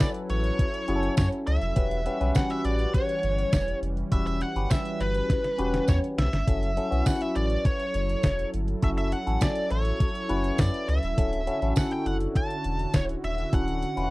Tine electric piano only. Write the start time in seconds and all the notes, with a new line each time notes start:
Already playing: C#4 E4 F#4 B4
0.88 C#4 E4 F#4 G#4
0.96 A4
1.76 C#4 F#4 G4 B4
2.06 C#4 F#4 G4 B4
2.20 C#4 F#4 G4 B4
4.12 C#4 F#4 G4 B4
4.56 C#4 F#4 G4 B4
5.58 C#4 F#4 G4 B4
6.47 C#4 E4 F#4 A4
6.77 C#4 E4 F#4 A4
6.91 C#4 E4 F#4 B4
8.82 C#4 E4 F#4 A4
9.26 C#4 E4 F#4 A4
10.29 C#4 E4 F#4 B4
11.17 C#4 E4 F#4 A4
11.47 C#4 E4 F#4 A4
11.62 C#4 E4 F#4 A4
13.52 C#4 E4 F#4 A4
13.96 C#4 E4 F4 B4
14.04 F#4